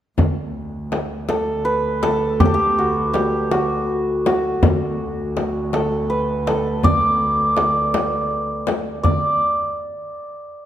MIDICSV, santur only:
0, 0, Header, 1, 2, 480
1, 0, Start_track
1, 0, Tempo, 738916
1, 123, Time_signature, 6, 3, 24, 8
1, 6921, End_track
2, 0, Start_track
2, 0, Title_t, "Santur"
2, 0, Program_c, 0, 15
2, 836, Note_on_c, 0, 69, 78
2, 1071, Note_on_c, 0, 71, 74
2, 1315, Note_off_c, 0, 69, 0
2, 1317, Note_on_c, 0, 69, 89
2, 1559, Note_on_c, 0, 67, 76
2, 1592, Note_off_c, 0, 69, 0
2, 1594, Note_on_c, 0, 69, 68
2, 1647, Note_off_c, 0, 67, 0
2, 1650, Note_on_c, 0, 67, 76
2, 1809, Note_on_c, 0, 66, 66
2, 1848, Note_off_c, 0, 67, 0
2, 2036, Note_on_c, 0, 67, 68
2, 2075, Note_off_c, 0, 66, 0
2, 2283, Note_on_c, 0, 66, 68
2, 2322, Note_off_c, 0, 67, 0
2, 2770, Note_off_c, 0, 66, 0
2, 2773, Note_on_c, 0, 66, 68
2, 2845, Note_off_c, 0, 71, 0
2, 3495, Note_off_c, 0, 69, 0
2, 3728, Note_on_c, 0, 69, 69
2, 3961, Note_on_c, 0, 71, 61
2, 4201, Note_off_c, 0, 69, 0
2, 4203, Note_on_c, 0, 69, 73
2, 4444, Note_on_c, 0, 74, 95
2, 4887, Note_off_c, 0, 66, 0
2, 5377, Note_off_c, 0, 74, 0
2, 5736, Note_off_c, 0, 71, 0
2, 5869, Note_on_c, 0, 74, 76
2, 6098, Note_off_c, 0, 74, 0
2, 6104, Note_off_c, 0, 69, 0
2, 6921, End_track
0, 0, End_of_file